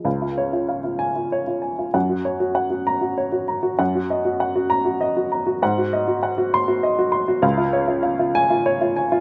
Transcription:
<<
  \new Staff \with { instrumentName = "Upright piano" } { \time 6/8 \key cis \mixolydian \tempo 4. = 65 << { r4. gis''8 r4 | r4. ais''8 r4 | r4. ais''8 r4 | r4. bis''8 r4 |
r4. gis''8 r4 | } \\ { eis''16 eis'16 cis''16 eis'16 eis''16 eis'8 eis'16 cis''16 eis'16 gis''16 eis'16 | fis''16 fis'16 cis''16 fis'16 fis''16 fis'8 fis'16 cis''16 fis'16 ais''16 fis'16 | fis''16 fis'16 dis''16 fis'16 fis''16 fis'8 fis'16 dis''16 fis'16 ais''16 fis'16 | fis''16 fis'16 dis''16 fis'16 fis''16 fis'8 fis'16 dis''16 fis'16 bis''16 fis'16 |
eis''16 eis'16 cis''16 eis'16 eis''16 eis'8 eis'16 cis''16 eis'16 gis''16 eis'16 | } >> }
  \new Staff \with { instrumentName = "Upright piano" } { \clef bass \time 6/8 \key cis \mixolydian cis,2. | fis,2. | fis,2. | gis,2. |
cis,2. | }
>>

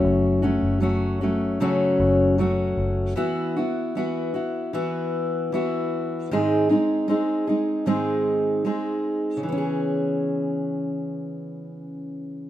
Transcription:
<<
  \new Staff \with { instrumentName = "Steel-string acoustic guitar" } { \time 4/4 \key cis \minor \tempo 4 = 77 <fis, cis fis a cis' fis'>8 <fis a cis' fis'>8 <fis a cis' fis'>8 <fis a cis' fis'>8 <fis, cis fis a cis' fis'>4 <fis a cis' fis'>4 | <e b e' fis'>8 <b e' fis'>8 <e b e' fis'>8 <b e' fis'>8 <e b e' fis'>4 <e b e' fis'>4 | <gis, dis gis bis dis' gis'>8 <gis bis dis' gis'>8 <gis bis dis' gis'>8 <gis bis dis' gis'>8 <gis, dis gis bis dis' gis'>4 <gis bis dis' gis'>4 | <cis e b cis' gis'>1 | }
  \new Staff \with { instrumentName = "Fingered electric bass" } { \clef bass \time 4/4 \key cis \minor fis,,8. fis,,4.~ fis,,16 fis,,4 fis,,8 | r1 | r1 | r1 | }
>>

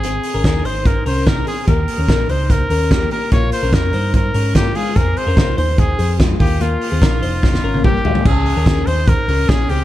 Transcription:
<<
  \new Staff \with { instrumentName = "Trumpet" } { \time 4/4 \key ees \mixolydian \tempo 4 = 146 aes'4. c''8 bes'8 c''8 bes'8 aes'8 | bes'4. c''8 bes'4. bes'8 | des''8 c''8 bes'4 bes'4 g'8 aes'8 | bes'8 c''4 c''8 aes'4 r8 g'8 |
f'2. g'4 | aes'4. c''8 bes'4 aes'8 g'8 | }
  \new Staff \with { instrumentName = "Clean electric guitar" } { \time 4/4 \key ees \mixolydian <c' aes'>8. <des' bes'>16 bes'8 <ees' c''>4 <des' bes'>8 <ees' bes'>8 <c' aes'>8 | <bes g'>8. <des' bes'>16 <ees' bes'>8 <ees' c''>4 <des' bes'>8 <bes g'>8 <bes g'>8 | <bes f'>8. <des' bes'>16 bes'8 <ees' c''>4 <des' bes'>8 <bes f'>8 <aes f'>8 | <c' aes'>8. <des' bes'>16 <f' bes'>8 <ees' c''>4 <c' aes'>8 <aes f'>8 <bes f'>8 |
<bes f'>8. <c' aes'>16 <ees' bes'>8 <ees' c''>4 <des' bes'>8 <bes g'>8 <aes f'>8 | <des' aes'>8. <des' bes'>16 <des' bes'>8 <ees' c''>4 <des' bes'>8 <des' aes'>8 <c' aes'>8 | }
  \new Staff \with { instrumentName = "Fingered electric bass" } { \clef bass \time 4/4 \key ees \mixolydian aes,,8 r16 aes,,16 ees,8 aes,,4 c,4 r8 | ees,8 r16 ees,16 bes,,8 des,4 ees,4 r8 | bes,,8 r16 bes,,16 f,8 g,4 aes,4 r8 | f,8 r16 f,16 c,8 ees,4 f,4 ees,8~ |
ees,8 r16 ees,16 bes,,8 f,,4 aes,,4 r8 | des,8. ees,8. ees,8. r16 des,8 bes,,8 des,8 | }
  \new DrumStaff \with { instrumentName = "Drums" } \drummode { \time 4/4 hh8 hho8 <hh bd sn>8 hho8 <hh bd>8 hho8 <hh bd sn>8 hho8 | <hh bd>8 hho8 <hh bd sn>8 hho8 <hh bd>8 hho8 <hh bd sn>8 hho8 | <hh bd>8 hho8 <hh bd sn>8 hho8 <hh bd>8 hho8 <hh bd sn>8 hho8 | <hh bd>8 hho8 <hh bd sn>8 hho8 <hh bd>8 hho8 <hh bd sn>8 <hho bd>8 |
hh8 hho8 <hh bd sn>8 hho8 <bd sn>16 sn8 tommh16 <bd toml>8 tomfh16 tomfh16 | <cymc bd>8 hho8 <hh bd sn>8 hho8 <hh bd>8 hho8 <hh bd sn>8 hho8 | }
>>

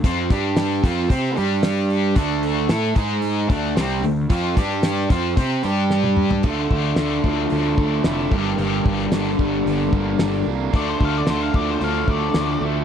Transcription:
<<
  \new Staff \with { instrumentName = "Lead electric guitar" } { \time 4/4 \key d \minor \tempo 4 = 112 r1 | r1 | r1 | r1 |
r1 | d''16 c''16 f''16 d''16 c''16 f''16 d''16 c''16 f''8 d''4 r8 | }
  \new Staff \with { instrumentName = "Overdriven electric guitar" } { \time 4/4 \key d \minor <f c' f'>8 <g d' g'>4 <f c' f'>8 <c' g' c''>8 <g d' g'>4. | <d a d'>4 <a e' a'>8 <gis dis' gis'>4 <d a d'>8 <c g c'>8 <d a>8 | <f c' f'>8 <g d' g'>4 <f c' f'>8 <c' g' c''>8 <g d' g'>4. | <d a d' f'>2.~ <d a d' f'>8 <g, d g bes d' g'>8~ |
<g, d g bes d' g'>2.~ <g, d g bes d' g'>8 r8 | <d a d' f'>1 | }
  \new Staff \with { instrumentName = "Overdriven electric guitar" } { \time 4/4 \key d \minor <f c' f'>8 <g d' g'>4 <f c' f'>8 <c' g' c''>8 <g d' g'>4. | <d a d'>4 <a e' a'>8 <gis dis' gis'>4 <d a d'>8 <c g c'>8 <d a>8 | <f c' f'>8 <g d' g'>4 <f c' f'>8 <c' g' c''>8 <g d' g'>4. | d4 d8 f8 d8 a8 e'8 g,8 |
g,4 d8 g8 d8 bes8 d'8 bes8 | d4 d8 f8 d8 a4 a8 | }
  \new Staff \with { instrumentName = "Picked electric bass" } { \clef bass \time 4/4 \key d \minor f,8 g,4 f,8 c8 g,4. | d,4 a,8 gis,4 d,8 c,8 d,8 | f,8 g,4 f,8 c8 g,4. | d,8 d,8 d,8 d,8 d,8 d,8 f,,8 g,,8 |
g,,8 g,,8 g,,8 g,,8 g,,8 g,,8 g,,8 c,8 | d,8 d,8 d,8 d,8 d,8 d,8 d,8 d,8 | }
  \new DrumStaff \with { instrumentName = "Drums" } \drummode { \time 4/4 <hho bd>8 <hho bd>8 <hho sn>8 <hho bd>8 <hho bd>8 hho8 <hho sn>8 hho8 | <hho bd>8 hho8 <hho sn>8 <hho bd>8 hho8 <hho bd>8 <hho sn>8 hho8 | <hho bd>8 <hho bd>8 <hho sn>8 <hho bd>8 <hho bd>8 hho8 sn16 tommh16 toml16 tomfh16 | <cymc bd>8 bd8 <hho sn>8 bd8 hho8 bd8 <hho sn>8 bd8 |
hho8 bd16 sn16 <hho sn>8 bd8 hho8 bd8 <hho sn>4 | <hho bd>8 bd8 <hho sn>8 bd8 hho8 bd8 <hho sn>4 | }
>>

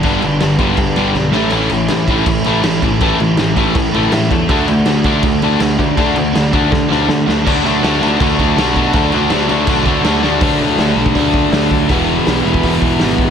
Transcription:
<<
  \new Staff \with { instrumentName = "Overdriven electric guitar" } { \time 4/4 \key d \lydian \tempo 4 = 162 <g, d g b d'>2.~ <g, d g b d'>8 <a, e a cis' e'>8~ | <a, e a cis' e'>2. <a, e a cis' e'>8 <a, e a cis' e'>8~ | <a, e a cis' e'>2. <a, e a cis' e'>8 r8 | <d a d' fis'>2.~ <d a d' fis'>8 <d a d' fis'>8 |
<d a d' fis'>2.~ <d a d' fis'>8 <d a d' fis'>8 | <d fis a d' fis'>8 <d fis a d' fis'>8 <d fis a d' fis'>8 <d fis a d' fis'>8 <d fis a d' fis'>8 <d fis a d' fis'>8 <d fis a d' fis'>8 <d fis a d' fis'>8 | <d fis a d' fis'>8 <d fis a d' fis'>8 <d fis a d' fis'>8 <d fis a d' fis'>8 <d fis a d' fis'>8 <d fis a d' fis'>8 <d fis a d' fis'>8 <d fis a d' fis'>8 | <d fis a d'>4. <d fis a d'>2~ <d fis a d'>8 |
<e gis b e'>4. <e gis b e'>2~ <e gis b e'>8 | }
  \new Staff \with { instrumentName = "Distorted electric guitar" } { \clef bass \time 4/4 \key d \lydian <g, d g>8 <g, d>8 <g, d>8 <g, d g>8 <g, d>8 <g, d g>8 <g, d>8 <a, e a>8 | <a, e a>8 <a, e>8 <a, e>8 <a, e a>8 <a, e>8 <a, e a>8 <a, e>8 <a, e>8 | <a, e a>8 <a, e>8 <a, e>8 <a, e a>8 <a, e>8 <a, e a>8 <a, e>8 <a, e>8 | <d a d'>8 <d a>8 <d a>8 <d a d'>8 <d a>8 <d a d'>8 <d a>8 <d a>8 |
<d a d'>8 <d a>8 <d a>8 <d a d'>8 <d a>8 <d a d'>8 <d a>8 <d a>8 | <d a d'>8 <d a d'>8 <d a d'>8 <d a d'>8 <d a d'>8 <d a d'>8 <d a d'>8 <d a d'>8 | <d a d'>8 <d a d'>8 <d a d'>8 <d a d'>8 <d a d'>8 <d a d'>8 <d a d'>8 <d a d'>8 | <d a d'>1 |
<e, b, e>1 | }
  \new Staff \with { instrumentName = "Overdriven electric guitar" } { \clef bass \time 4/4 \key d \lydian <g, d g>8 <g, d>8 <g, d>8 <g, d g>8 <g, d>8 <g, d g>8 <g, d>8 <a, e a>8 | <a, e a>8 <a, e>8 <a, e>8 <a, e a>8 <a, e>8 <a, e a>8 <a, e>8 <a, e>8 | <a, e a>8 <a, e>8 <a, e>8 <a, e a>8 <a, e>8 <a, e a>8 <a, e>8 <a, e>8 | <d a d'>8 <d a>8 <d a>8 <d a d'>8 <d a>8 <d a d'>8 <d a>8 <d a>8 |
<d a d'>8 <d a>8 <d a>8 <d a d'>8 <d a>8 <d a d'>8 <d a>8 <d a>8 | <d a d'>8 <d a d'>8 <d a d'>8 <d a d'>8 <d a d'>8 <d a d'>8 <d a d'>8 <d a d'>8 | <d a d'>8 <d a d'>8 <d a d'>8 <d a d'>8 <d a d'>8 <d a d'>8 <d a d'>8 <d a d'>8 | <d a d'>2 <d a d'>2 |
<e, b, e>2 <e, b, e>2 | }
  \new Staff \with { instrumentName = "Picked electric bass" } { \clef bass \time 4/4 \key d \lydian g,,8 g,,8 g,,8 g,,8 g,8 g,,8 b,,8 a,,8 | a,,8 a,,8 a,,4 a,,8 a,,8 a,,8 a,,8 | a,,8 a,,8 a,,8 a,,8 a,8 a,,8 a,8 e,8 | d,8 d,8 d,4 d,8 d,8 d,8 d,8 |
d,8 d,8 d,8 d,8 d8 d,8 d8 d,8 | d,8 d,8 d,8 d,8 d,8 d,8 b,,8 b,8 | d,8 d,8 d,8 d,8 b,,8 d,8 d,8 d,8 | d,8 d,8 d,8 b,,8 d,4 d,8 d,8 |
e,,4 b,,8 e,,8 e,,8 e,,8 gis,,4 | }
  \new DrumStaff \with { instrumentName = "Drums" } \drummode { \time 4/4 <cymc bd>8 cymc8 <cymc sn>8 <cymc bd>8 <cymc bd>8 cymc8 sn8 sn8 | cymc8 cymc8 <cymc sn>8 <cymc bd>8 <cymc bd>8 cymc8 <cymc sn>8 <cymc bd>8 | <cymc bd>8 cymc8 <cymc sn>8 <cymc bd>8 <cymc bd>8 cymc8 <cymc sn>8 <cymc bd>8 | <cymc bd>8 cymc8 <cymc sn>8 <cymc bd>8 <cymc bd>8 cymc8 <cymc sn>8 <cymc bd>8 |
<cymc bd>8 cymc8 <cymc sn>8 <cymc bd>8 <bd sn>8 sn8 sn8 sn8 | <cymc bd>8 cymc8 <cymc sn>8 cymc8 <cymc bd>8 <cymc bd>8 <cymc sn>8 <cymc bd>8 | <cymc bd>8 cymc8 <cymc sn>8 cymc8 <cymc bd>8 <cymc bd>8 <cymc sn>8 sn8 | <hho bd>4 <hho sn>8. bd16 <hho bd>8 bd8 <hho sn>8 bd8 |
<hho bd>4 <hho sn>8. bd16 <hho bd>8 bd8 <hho sn>8 bd8 | }
>>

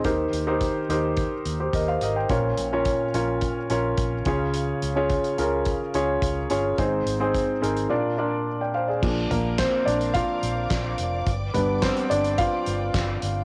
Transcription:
<<
  \new Staff \with { instrumentName = "String section" } { \time 4/4 \key bes \dorian \tempo 4 = 107 << { r1 | r1 | r1 | r1 |
\key bes \mixolydian <d'' d'''>1~ | <d'' d'''>1 | } \\ { r1 | r1 | r1 | r1 |
<bes' f''>1 | <b' g''>1 | } >> }
  \new Staff \with { instrumentName = "Grand piano" } { \time 4/4 \key bes \dorian << { r2 r8. <g' c''>16 <bes' ees''>16 <c'' f''>16 <bes' ees''>16 <c'' g''>16~ | <c'' g''>16 r2. r8. | r1 | r2. r16 <d'' g''>16 <c'' f''>16 <aes' d''>16~ |
\key bes \mixolydian <aes' d''>16 r16 <bes bes'>8 <c' c''>8 <d' d''>8 <f' f''>4. r8 | r8 b'8 <c' c''>8 <d' d''>8 <f' f''>4. r8 | } \\ { <ees' g' bes' c''>8 r16 <ees' g' bes' c''>8 r16 <ees' g' bes' c''>8. r4. r16 | <des' f' bes' des''>8 r16 <des' f' bes' des''>8 r16 <des' f' bes' des''>8. r16 <des' f' bes' des''>8. r16 <des' f' aes' des''>8~ | <des' f' aes' des''>8 r16 <des' f' aes' des''>8 r16 <des' f' aes' bes'>8. r16 <des' f' aes' des''>8. r16 <des' f' aes' des''>8 | <c' ees' aes' c''>8 r16 <c' ees' aes' c''>8 r16 <c' ees' aes' bes'>8 <d' f' bes' d''>8 <d' f' bes' d''>8. r8. |
r1 | r1 | } >> }
  \new Staff \with { instrumentName = "Grand piano" } { \clef bass \time 4/4 \key bes \dorian ees4. r2 r8 | bes,4. r2 des8~ | des4 r2. | aes,4. r8 bes,4. r8 |
\key bes \mixolydian <f bes d'>1 | r8 <g b d'>4. r2 | }
  \new Staff \with { instrumentName = "Fingered electric bass" } { \clef bass \time 4/4 \key bes \dorian ees,8 ees,8. r16 ees,8. r16 ees,8 ees,8 aes,,8 | bes,,8 bes,,8. r16 bes,,8. r16 bes,,8 bes,,8 des,8~ | des,8 des,8. r16 des,8. r16 des,8 des,8 g,,8 | aes,,8 aes,,8. r16 aes,,8 r2 |
\key bes \mixolydian bes,,8 bes,,8. r16 bes,,8. r16 bes,,8 bes,,8 f,,8 | g,,8 g,,8. r16 g,,8. r16 g,,8 g,,8 g,,8 | }
  \new DrumStaff \with { instrumentName = "Drums" } \drummode { \time 4/4 <hh bd>8 hh8 <hh bd>8 hh8 <hh bd>8 hh8 <hh bd>8 hh8 | <hh bd>8 hh8 <hh bd>8 hh8 <hh bd>8 hh8 <hh bd>8 <hh bd>8 | hh8 hh8 <hh bd>16 hh16 hh8 <hh bd>8 hh8 <hh bd>8 hh8 | <hh bd>8 hh8 <hh bd>8 hh16 hh16 r4 r4 |
<cymc bd>8 <hh tomfh>8 <hc hh bd sn>8 hh16 hh16 <hh bd>8 hh8 <hc hh bd sn>8 hh8 | <hh bd>8 <hh tomfh>8 <hc hh bd sn>16 hh16 hh16 hh16 <hh bd>8 hh8 <hc hh bd sn>8 hh8 | }
>>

